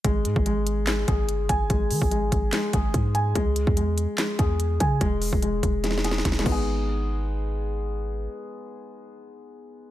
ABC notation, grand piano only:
X:1
M:4/4
L:1/8
Q:1/4=145
K:G#m
V:1 name="Grand piano" clef=bass
G,2 G,2 G, G2 g | G,2 G,2 G, G2 g | G,2 G,2 G, G2 g | G,2 G,2 G, G2 [G,B,DG]- |
[G,B,DG]8- | [G,B,DG]8 |]